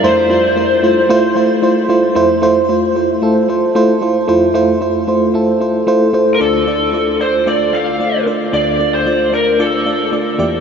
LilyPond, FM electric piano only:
<<
  \new Staff \with { instrumentName = "FM electric piano" } { \time 4/4 \key d \minor \tempo 4 = 113 <a e' f' c''>8 <a e' f' c''>8 <a e' f' c''>8 <a e' f' c''>8 <a e' f' c''>8 <a e' f' c''>8 <a e' f' c''>8 <a e' f' c''>8 | <a e' f' c''>8 <a e' f' c''>8 <a e' f' c''>8 <a e' f' c''>8 <a e' f' a'>8 <a e' f' c''>8 <a e' f' c''>8 <a e' f' c''>8 | <a e' f' c''>8 <a e' f' c''>8 <a e' f' c''>8 <a e' f' c''>8 <a e' f' a'>8 <a e' f' c''>8 <a e' f' c''>8 <a e' f' c''>8 | <a d' f' d''>8 <a d' f' d''>8 <a d' f' d''>8 <a d' f' d''>8 <a d' f' d''>8 <a d' f' d''>8 <a d' f' d''>8 <a d' f' d''>8 |
<a d' f' d''>8 <a d' f' d''>8 <a d' f' d''>8 <a d' f' d''>8 <a d' f' d''>8 <a d' f' d''>8 <a d' f' d''>8 <bes e' g' d''>8 | }
  \new Staff \with { instrumentName = "FM electric piano" } { \clef bass \time 4/4 \key d \minor f,1 | f,1 | f,1 | <d, d>1 |
<d, d>2.~ <d, d>8 <e, e>8 | }
>>